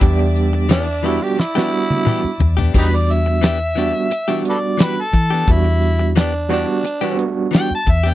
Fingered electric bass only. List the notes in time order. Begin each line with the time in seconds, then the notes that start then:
0.01 E2
2.24 muted fingered electric bass stroke
2.40 E2
2.74 E2
5.14 E3
5.48 E2
7.71 muted fingered electric bass stroke
7.87 E2